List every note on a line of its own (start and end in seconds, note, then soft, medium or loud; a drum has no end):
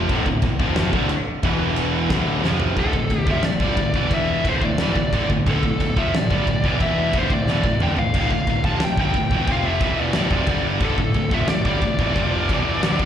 0.00 0.10 C3 medium
0.00 0.11 F3 medium
0.09 0.25 D1 medium
0.09 0.25 D2 medium
0.09 0.26 A2 medium
0.09 0.27 D3 loud
0.09 kick medium
0.09 china medium
0.26 0.42 D1 medium
0.26 0.40 D2 medium
0.26 0.40 A2 medium
0.26 kick medium
0.42 0.59 D1 medium
0.42 0.59 D2 medium
0.42 0.60 A2 medium
0.42 kick medium
0.42 china medium
0.59 0.92 F1 medium
0.59 0.93 F2 loud
0.59 0.93 C3 medium
0.59 0.93 F3 loud
0.59 kick loud
0.76 snare loud
0.76 china medium
0.93 1.09 D1 loud
0.93 1.10 D2 medium
0.93 1.10 A2 medium
0.93 1.11 D3 loud
0.93 kick loud
1.09 china medium
1.43 2.07 E1 loud
1.43 2.10 E2 medium
1.43 2.11 B2 medium
1.43 2.11 E3 loud
1.43 kick loud
1.43 china medium
1.76 china medium
2.10 2.42 D1 loud
2.10 2.43 D2 medium
2.10 2.44 A2 loud
2.10 2.44 D3 medium
2.10 kick loud
2.10 snare loud
2.10 china medium
2.43 2.75 F1 medium
2.43 2.76 F2 medium
2.43 2.76 C3 medium
2.43 2.77 F3 medium
2.43 snare medium
2.60 floor tom medium
2.76 2.93 D1 medium
2.76 2.93 D2 medium
2.76 2.93 A2 medium
2.76 2.94 D3 medium
2.76 3.31 A4 medium
2.76 kick medium
2.76 china soft
2.93 3.10 D1 medium
2.93 3.08 D2 medium
2.93 3.08 A2 medium
2.93 kick medium
3.10 3.26 D1 medium
3.10 3.25 D2 medium
3.10 3.25 A2 medium
3.10 kick medium
3.10 china medium
3.26 3.42 F1 medium
3.26 3.43 F2 medium
3.26 3.44 C3 loud
3.26 3.44 F3 loud
3.26 kick loud
3.31 3.45 E5 medium
3.42 3.59 D1 medium
3.42 3.58 D2 medium
3.42 3.58 A2 medium
3.42 3.95 D5 medium
3.42 snare loud
3.42 china medium
3.60 3.76 G1 medium
3.60 3.78 G2 medium
3.60 3.77 D3 medium
3.60 3.78 G3 medium
3.60 kick loud
3.77 3.93 D1 medium
3.77 3.92 D2 medium
3.77 3.92 A2 medium
3.77 kick medium
3.77 china medium
3.94 4.42 E1 medium
3.94 4.45 E2 medium
3.94 4.46 B2 medium
3.94 4.46 E3 loud
3.94 4.11 D5 medium
3.94 kick medium
4.11 4.45 E5 medium
4.11 kick loud
4.11 china medium
4.44 4.61 D1 medium
4.44 4.62 D2 medium
4.44 4.62 A2 medium
4.44 4.63 D3 medium
4.44 kick loud
4.44 china medium
4.49 4.65 C5 medium
4.61 4.78 D1 medium
4.61 4.76 D2 medium
4.61 4.76 A2 medium
4.61 5.26 D5 loud
4.61 kick medium
4.78 4.95 E1 medium
4.78 4.96 E2 medium
4.78 4.96 B2 medium
4.78 4.97 E3 medium
4.78 snare loud
4.78 china medium
4.95 5.11 D1 medium
4.95 5.10 D2 medium
4.95 5.10 A2 medium
4.95 kick medium
5.13 5.29 D1 medium
5.13 5.29 D2 medium
5.13 5.30 A2 medium
5.13 5.30 D3 loud
5.13 kick loud
5.13 china medium
5.30 5.45 D1 medium
5.30 5.44 D2 medium
5.30 5.44 A2 medium
5.30 kick medium
5.46 5.62 D1 medium
5.46 5.62 D2 medium
5.46 5.63 A2 medium
5.46 5.63 D3 medium
5.46 kick medium
5.46 china medium
5.51 6.00 A4 medium
5.63 5.79 D1 medium
5.63 5.77 D2 medium
5.63 5.77 A2 medium
5.63 kick medium
5.80 5.96 D1 medium
5.80 5.94 D2 medium
5.80 5.94 A2 medium
5.80 kick medium
5.80 china medium
5.96 6.12 F1 medium
5.96 6.13 F2 medium
5.96 6.13 C3 loud
5.96 6.13 F3 loud
5.96 6.16 E5 loud
5.96 kick loud
6.13 6.29 D1 medium
6.13 6.27 D2 medium
6.13 6.27 A2 medium
6.13 6.67 D5 medium
6.13 snare loud
6.13 china medium
6.30 6.46 G1 medium
6.30 6.46 G2 medium
6.30 6.47 D3 medium
6.30 6.47 G3 medium
6.30 kick loud
6.47 6.63 D1 medium
6.47 6.65 D2 medium
6.47 6.65 A2 medium
6.47 kick medium
6.47 china medium
6.63 7.10 E1 medium
6.63 7.14 E2 medium
6.63 7.14 B2 loud
6.63 7.15 E3 medium
6.63 kick medium
6.68 6.82 D5 medium
6.80 7.17 E5 loud
6.80 kick medium
6.80 china soft
7.13 7.29 D1 medium
7.13 7.31 D2 medium
7.13 7.31 A2 medium
7.13 7.32 D3 loud
7.13 kick loud
7.13 china medium
7.18 7.32 C5 medium
7.30 7.46 D1 medium
7.30 7.45 D2 medium
7.30 7.45 A2 medium
7.30 7.83 D5 loud
7.30 kick medium
7.47 7.63 E1 medium
7.47 7.64 E2 medium
7.47 7.65 B2 medium
7.47 7.65 E3 loud
7.47 snare medium
7.64 7.80 D1 medium
7.64 7.78 D2 medium
7.64 7.79 A2 medium
7.64 kick medium
7.80 7.96 D1 medium
7.80 7.97 D2 medium
7.80 7.97 A2 medium
7.80 7.98 D3 medium
7.80 7.89 G5 medium
7.80 mid tom medium
7.97 8.13 D1 medium
7.97 8.12 D2 medium
7.97 8.12 A2 medium
7.97 8.30 F5 medium
7.97 floor tom medium
8.14 8.29 D1 medium
8.14 8.28 D2 medium
8.14 8.29 A2 medium
8.14 8.31 D3 medium
8.14 kick medium
8.14 crash medium
8.14 china medium
8.30 8.46 D1 medium
8.30 8.44 D2 medium
8.30 8.44 A2 medium
8.30 8.64 F5 loud
8.30 kick medium
8.47 8.63 D1 medium
8.47 8.61 D2 medium
8.47 8.62 A2 medium
8.47 kick medium
8.47 china soft
8.64 8.80 F1 medium
8.64 8.81 F2 medium
8.64 8.81 C3 loud
8.64 8.82 F3 medium
8.64 8.84 A5 loud
8.64 kick loud
8.80 8.97 D1 medium
8.80 8.95 D2 medium
8.80 8.95 A2 medium
8.80 snare loud
8.80 china medium
8.84 8.99 G5 medium
8.97 9.13 G1 medium
8.97 9.14 G2 medium
8.97 9.14 D3 medium
8.97 9.15 G3 medium
8.97 9.51 G5 medium
8.97 kick loud
9.14 9.30 D1 medium
9.14 9.28 D2 medium
9.14 9.28 A2 medium
9.14 kick medium
9.14 china medium
9.30 9.47 E1 loud
9.30 9.49 E2 medium
9.30 9.49 B2 loud
9.30 9.49 E3 loud
9.30 kick loud
9.47 9.79 F1 medium
9.47 9.81 F2 medium
9.47 9.82 C3 loud
9.47 9.82 F3 loud
9.47 kick loud
9.47 china medium
9.52 9.65 F5 loud
9.66 9.97 E5 medium
9.81 10.12 E1 medium
9.81 10.14 E2 medium
9.81 10.15 B2 loud
9.81 10.15 E3 medium
9.81 kick loud
9.81 china medium
10.01 10.63 D5 loud
10.13 10.30 D1 medium
10.13 10.30 D2 medium
10.13 10.31 A2 medium
10.13 10.31 D3 medium
10.13 snare loud
10.13 china medium
10.30 10.47 F1 medium
10.30 10.46 F2 medium
10.30 10.47 C3 medium
10.30 10.47 F3 medium
10.30 kick loud
10.46 10.79 G1 medium
10.46 10.81 G2 medium
10.46 10.81 D3 medium
10.46 10.82 G3 loud
10.46 kick loud
10.46 china medium
10.80 10.97 D1 medium
10.80 10.97 D2 medium
10.80 10.97 A2 loud
10.80 10.99 D3 loud
10.80 kick loud
10.80 china medium
10.85 11.36 A4 medium
10.97 11.14 D1 medium
10.97 11.12 D2 medium
10.97 11.12 A2 medium
10.97 kick medium
11.14 11.30 D1 medium
11.14 11.29 D2 medium
11.14 11.29 A2 medium
11.14 kick medium
11.14 china medium
11.31 11.46 F1 medium
11.31 11.49 F2 loud
11.31 11.49 C3 medium
11.31 11.49 F3 medium
11.31 11.49 E5 medium
11.31 kick loud
11.47 11.64 D1 medium
11.47 11.63 D2 medium
11.47 11.64 A2 medium
11.47 11.65 D5 medium
11.47 snare loud
11.47 china medium
11.65 11.81 G1 medium
11.65 11.83 G2 medium
11.65 11.83 D3 medium
11.65 11.83 G3 medium
11.65 13.05 D5 medium
11.65 kick loud
11.82 11.98 D1 medium
11.82 11.97 D2 medium
11.82 11.97 A2 medium
11.82 kick medium
11.82 china medium
11.99 12.15 E1 medium
11.99 12.15 E2 medium
11.99 12.16 B2 loud
11.99 12.16 E3 loud
11.99 kick loud
12.16 12.48 F1 medium
12.16 12.49 F2 medium
12.16 12.49 C3 medium
12.16 12.50 F3 loud
12.16 kick medium
12.16 china medium
12.49 12.81 E1 medium
12.49 12.83 E2 medium
12.49 12.83 B2 medium
12.49 12.84 E3 loud
12.49 kick loud
12.49 china medium
12.82 12.98 D1 medium
12.82 13.00 D2 medium
12.82 13.00 A2 loud
12.82 13.00 D3 medium
12.82 snare loud
12.82 china medium
12.99 13.05 F1 medium
12.99 13.05 F2 medium
12.99 13.05 C3 medium
12.99 13.05 F3 loud
12.99 kick loud